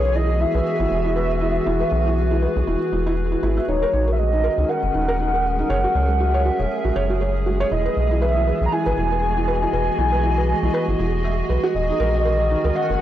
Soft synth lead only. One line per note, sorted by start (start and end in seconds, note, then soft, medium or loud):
0.00 0.17 C#5 loud
0.15 0.42 D#5 loud
0.41 3.18 E5 loud
3.68 4.09 C#5 loud
4.12 4.20 E5 medium
4.18 4.70 D#5 loud
4.69 5.69 F#5 loud
5.70 7.17 F#5 loud
7.71 8.18 D#5 loud
8.22 8.63 E5 loud
8.66 8.74 A#5 medium
8.72 9.73 G#5 loud
9.73 11.20 G#5 loud
11.75 12.22 D#5 loud
12.25 12.77 D#5 loud
12.76 13.01 F#5 loud